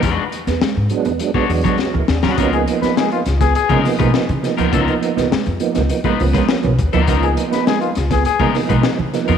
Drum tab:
HH |x-xx--xxx-ox----|xxxx-xxxxxox-xxx|xxxx-xxxxxox-xxx|xxxx-xxxxxox--xx|
SD |---oo-------o-oo|---oo-oo--o-o-o-|---oo--o---oo---|---oo-oo--o-o-o-|
BD |o--------o-o----|o------o-o-o----|o--------o-o--o-|o------o-o-o----|